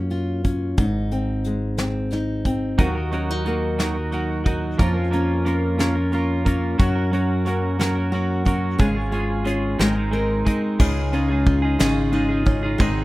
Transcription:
Already playing: F#2 F#3 A#3 C#4
0.10 F4, closed hi-hat
0.44 C#4, kick, closed hi-hat
0.78 G#1 G#2 D#4, kick, closed hi-hat
1.11 C4, closed hi-hat
1.44 G#3, closed hi-hat
1.77 C4, snare, closed hi-hat
2.11 D#4, snare, closed hi-hat
2.45 C4, kick, closed hi-hat
2.78 D#2 D#3 F#3 D#4 F#4 A#4, kick, closed hi-hat
2.95 D#4 F#4 A#4
3.11 F#3 C#4 D#4 F#4 A#4, closed hi-hat
3.30 D#4
3.45 F#3 A#3 D#4 F#4 A#4, closed hi-hat
3.79 D#3 F#3 D#4 F#4 A#4, snare, closed hi-hat
3.94 D#4 F#4 A#4
4.11 F#3 D#4 F#4 A#4, closed hi-hat
4.44 F#3 D#4 F#4 A#4, kick, closed hi-hat
4.78 F2 F3 A#3 C#4 F4 A#4, kick, closed hi-hat
4.94 C#4 F4 A#4
5.11 A#3 C#4 F4 A#4, closed hi-hat
5.45 A#3 C#4 F4 A#4, closed hi-hat
5.78 F3 A#3 C#4 F4 A#4, snare, closed hi-hat
5.95 C#4 F4 A#4
6.12 A#3 C#4 F4 A#4, closed hi-hat
6.45 A#3 C#4 F4 A#4, kick, closed hi-hat
6.78 F#2 F#3 C#4 F#4 A#4, kick, closed hi-hat
6.95 C#4 F#4 A#4
7.12 F#3 C#4 F#4 A#4, closed hi-hat
7.45 F#3 A#3 C#4 F#4 A#4, closed hi-hat
7.79 F#3 C#4 F#4 A#4, snare, closed hi-hat
7.95 C#4 F#4 A#4
8.12 F#3 C#4 F#4 A#4, closed hi-hat
8.45 F#3 C#4 F#4 A#4, kick, closed hi-hat
8.79 G#1 G#2 C#3 G#3 C#4 F4 G#4, kick, closed hi-hat
8.95 G#3 C#4 F4 G#4
9.11 G#3 C#4 F4 G#4, closed hi-hat
9.44 G#3 C#4 F4 G#4, closed hi-hat
9.79 G#1 G#2 D#3 G#3 C4 D#4 A#4, snare, closed hi-hat
9.95 G#3 C4 D#4 A#4
10.11 G#3 C4 D#4 A#4, closed hi-hat
10.45 G#3 C4 D#4 A#4, kick, closed hi-hat
10.79 C#2 C#3 G#3 D#4 F4 G#4, kick, crash
11.12 G#3 C#4 D#4 F4 G#4, ride
11.29 D#4 F4 G#4
11.46 D#4, kick, ride
11.62 D#4 F4 G#4
11.79 G#1 C#3 G#3 C#4 D#4 F4 G#4, snare, ride
12.12 G#3 D#4 F4 G#4, ride
12.29 D#4 F4 G#4
12.46 C#4, kick, ride
12.63 D#4 F4 G#4
12.79 G#1 G#2 D#3 G#3 C4 D#4 G#4, kick, ride

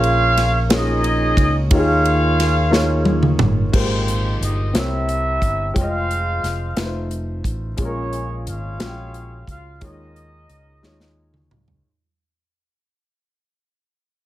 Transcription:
Already playing: A#1 A#2 A#3 C#4 F4 G#4 C#5 F5
0.04 ride
0.37 snare, ride
0.69 A#3 C#4 F4 G#4 C#5, snare, ride
0.74 D#4 G#4 D#5
1.04 ride
1.37 C#2, kick, ride
1.71 D#2 D#3 A#3 D#4 F4 G4 G#4 C#5, kick, ride
1.75 F4 G#4 F5
2.05 ride
2.40 snare, ride
2.71 A#3 D#4 F4 G#4 C#5, snare
3.05 high tom
3.23 mid tom
3.39 G1, mid tom
3.72 G#1 A#2 G#3 A#3 G4 C5, kick, crash
3.76 C4 D#4 G4 C5
4.08 closed hi-hat
4.40 G1 D#4 D#5, closed hi-hat
4.73 C2 C3 C4 E4 A#4 C#5, snare, closed hi-hat
4.77 E4 G4 A#4 E5
5.09 closed hi-hat
5.42 G1, kick, closed hi-hat
5.74 F1 G#3 F4 C#5 G5, kick, closed hi-hat
5.79 F4 G#4 C5 D#5 F5
6.11 closed hi-hat
6.43 F1, snare, closed hi-hat
6.76 F1 A3 D#4 F4 B4, snare, closed hi-hat
6.84 C5
7.11 closed hi-hat
7.44 A1, kick, closed hi-hat
7.77 A#1 A#2 G#3 C#4 F4 G#4 C#5, kick, closed hi-hat
7.81 F4 G#4 A#4
8.13 closed hi-hat
8.46 G#1 F4 G#4 C#5 F5, closed hi-hat
8.78 A#1 G#3 C#4 F4 F#4, snare, closed hi-hat
8.86 G5
9.14 closed hi-hat
9.47 C#2 F4 F5, kick, closed hi-hat
9.81 D#2 D#3 G#3 D#4 F4 G#4 A#4 C#5 D#5, kick, closed hi-hat
10.16 closed hi-hat
10.49 C#2, closed hi-hat
10.83 D#2 G#3 D#4 F4 C#5, snare
11.00 snare
11.34 mid tom
11.51 C#2, mid tom
11.68 floor tom

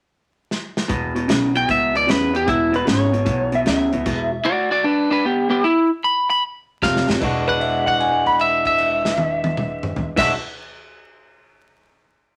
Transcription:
0.51 snare
0.77 snare
0.88 E1 E2 B2, kick, closed hi-hat
1.15 E2 B2, closed hi-hat
1.28 B1 E2 C#3, snare, closed hi-hat
1.54 E2 B2 G5, closed hi-hat
1.68 C#2 E2 B2 E5, kick, closed hi-hat
1.95 E2 B2 D5, closed hi-hat
2.07 E2 C#3 B4, snare, closed hi-hat
2.33 E2 B2 G4, closed hi-hat
2.46 E1 E2 B2 E4, kick, closed hi-hat
2.72 E2 B2 B4, closed hi-hat
2.85 G#1 E2 C#3, snare, closed hi-hat
2.89 C#5
3.13 E2 B2, closed hi-hat
3.25 B1 E2 B2, kick, closed hi-hat
3.52 E2 B2 E5, closed hi-hat
3.66 D2 E2 C#3 E5, snare, closed hi-hat
3.93 C#2 E2 B2, closed hi-hat
4.06 E1 E2 B2, kick, closed hi-hat, crash
4.45 F#4 D5
4.71 F#4 D5
4.84 D4 B4
5.11 D4 B4
5.25 B3 G4
5.50 B3 G4
5.64 E4
6.04 B5
6.30 B5
6.82 F1 F2 C3 F5, kick, snare
6.96 snare
7.08 F1 F2 C3, snare
7.20 E1 E3 G#3 D4 F#4, kick, crash
7.48 B4 F#5, kick, crash
7.61 E5, crash
7.86 F#5, kick, crash
8.00 G#5, crash
8.26 B5, kick, crash
8.39 E5, crash
8.65 E5, kick, crash
8.78 crash
9.05 snare
9.17 high tom
9.44 high tom
9.57 mid tom
9.83 mid tom
9.96 floor tom
10.16 E1 E3 G#3 D4 F#4 E5, kick, snare, crash

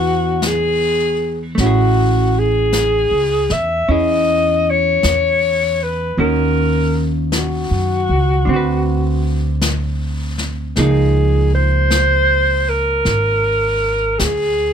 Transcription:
Already playing: E2 E3 B3 D4 F#4 G#4
0.42 brush sweep, snare, hi-hat pedal
0.47 G#4
1.55 A1 A3, brush sweep, snare
1.60 C#4 E4 F#4
1.66 G#4
2.39 G#4
2.72 brush sweep, snare, hi-hat pedal
3.11 C#2
3.50 E2 E5, snare
3.88 E2 C#4 E4 G#4 D#5, brush sweep
4.70 C#5
5.03 E2, brush sweep, snare, hi-hat pedal
5.83 B4
6.17 D#2 D#3 A#3 C#4 F#4 A#4, brush sweep
7.32 brush sweep, snare, hi-hat pedal
7.36 F#4
7.71 F#2
8.09 C#2
8.45 D2 D3 C4, brush sweep
8.54 F#4 B4
9.61 brush sweep, snare, hi-hat pedal
10.38 snare
10.76 C#2 F3 A#3 D#4 G#4, brush sweep, snare
11.55 C5
11.91 brush sweep, snare, hi-hat pedal
12.69 A#4
13.05 G#1, brush sweep, snare
14.19 D2 G4, brush sweep, snare, hi-hat pedal
14.24 G#4

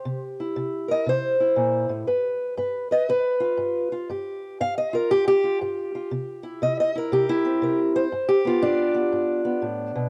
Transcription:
Already playing: G4 C5
0.05 C3
0.40 E4
0.56 C3
0.88 A#4 D#5
1.06 C3 C5
1.40 E4
1.56 A#2
1.89 A2
2.07 G2 B4
2.57 G2 B4
2.91 B4 D#5
3.09 G2 B4
3.40 F4
3.58 G2
3.92 F4
4.10 G2 G4
4.60 G2 F5
4.78 D#5
4.93 F4 A#4
5.10 G2 G4
5.28 G4
5.44 F4
5.61 G2 G4
5.95 F4
6.11 C3
6.43 E4
6.62 C3 D#5
6.80 D#5
6.95 E4 A#4
7.12 C3 G4
7.29 E4
7.45 C4
7.62 C3 A#4
7.96 C5
8.12 G2
8.29 G4
8.45 B3 F4
8.62 G2 D4
8.94 B3
9.12 G2
9.45 B3
9.62 A2
9.95 B2

